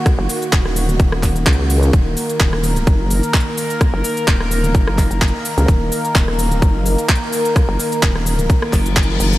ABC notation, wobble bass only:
X:1
M:4/4
L:1/16
Q:"Swing 16ths" 1/4=128
K:Ebm
V:1 name="Wobble bass" clef=bass
z G,,, z2 E,,,4 E,,,4 D,,4 | E,,,2 z2 E,,,4 G,,,3 z4 z | z G,,, z2 E,,,4 G,,,3 G,,,2 z2 D,, | E,,,2 z2 E,,,4 G,,,3 z4 z |
z G,,, z2 E,,,4 z2 G,,,4 G,,,2 |]